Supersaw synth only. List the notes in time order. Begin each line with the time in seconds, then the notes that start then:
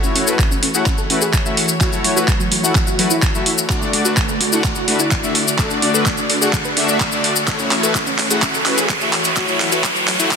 Already playing: A3 E4 F#4 C#5
0.27 A3 E4 F#4 B4
0.75 A3 E4 F#4 F#5
1.10 A3 E4 F#4 B4
1.45 A3 E4 F#4 E5
1.81 A3 E4 F#4 C#5
2.16 A3 E4 F#4 B4
2.64 A3 E4 F#4 F#5
2.99 A3 E4 F#4 B4
3.34 A3 E4 F#4 E5
3.70 A3 D4 F#4 D5
4.05 A3 D4 F#4 B4
4.52 A3 D4 F#4 F#5
4.88 A3 D4 F#4 B4
5.23 A3 D4 F#4 E5
5.59 A3 D4 F#4 D5
5.94 A3 D4 F#4 B4
6.42 A3 D4 F#4 F#5
6.77 A3 D4 F#4 E5
7.12 A3 D4 F#4 D5
7.48 A3 E4 F#4 C#5
7.83 A3 E4 F#4 B4
8.31 A3 E4 F#4 F#5
8.66 A3 E4 F#4 B4
9.01 A3 E4 F#4 E5
9.37 A3 E4 F#4 C#5
9.72 A3 E4 F#4 B4
10.20 A3 E4 F#4 F#5